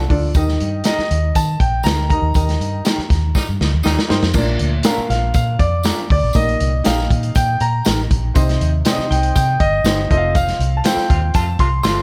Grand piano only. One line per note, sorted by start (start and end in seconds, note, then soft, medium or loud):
0.86 1.37 D#5 medium
1.36 1.61 A5 loud
1.60 1.86 G5 medium
1.84 2.08 A#5 loud
2.10 3.56 A#5 loud
5.10 5.33 F5 medium
5.34 5.61 F5 medium
5.59 6.10 D5 medium
6.12 6.37 D5 medium
6.36 6.87 D#5 loud
6.86 7.37 F5 medium
7.36 7.61 G5 loud
7.61 8.07 A#5 loud
9.11 9.34 G5 loud
9.36 9.61 G5 loud
9.60 10.10 D#5 loud
10.11 10.34 D#5 medium
10.36 10.80 F5 loud
10.77 10.84 A5 medium
10.85 11.31 G5 loud
11.35 11.58 A5 loud
11.60 11.82 C6 loud
11.83 12.02 C6 loud